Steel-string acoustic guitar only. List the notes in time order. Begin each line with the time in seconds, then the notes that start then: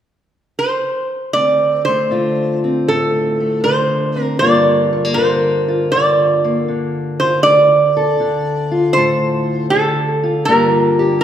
1.35 D2 C4
1.87 A3
2.11 D3 F4
2.64 C4
2.88 A2
3.40 A3
3.64 D3
4.16 C4
4.40 G2 D3 A#3 F4 A#4
4.93 G3
5.05 A#3
5.17 D3 A#4
5.68 F4
5.93 D3
6.44 A#3
6.68 D3
7.21 F4
7.44 D2
7.97 A4
8.20 D3
8.71 F4
8.97 A2 A4
9.72 D3
10.23 F4
10.48 G2 D3 A#3 F4 G4
10.99 G4